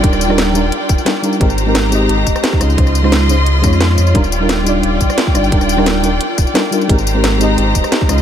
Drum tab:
HH |x-x-x-x-x-x-x-x-|x-x-x-x-x-x-x-x-|x-x-x-x-x-x-x-x-|x-x-x-x-x-x-x-x-|
TB |-xx---x---xx--xx|-xx---x---xx--xx|-xx---x---xx--xx|-xx---x---xx--xx|
SD |-r-ro-------o---|----o------ro-r-|-r-ro-------o---|----o------ro-r-|
BD |o---------o-----|o---------o--o--|o---------o-----|o---------o--o--|

HH |x-x-x-x-x-x-x-x-|x-x-x-x-x-x-x-x-|
TB |-xx---x---xx--xx|-xx---x---xx--xx|
SD |-r-ro-------o---|----o------ro-r-|
BD |o---------o-----|o---------o--o--|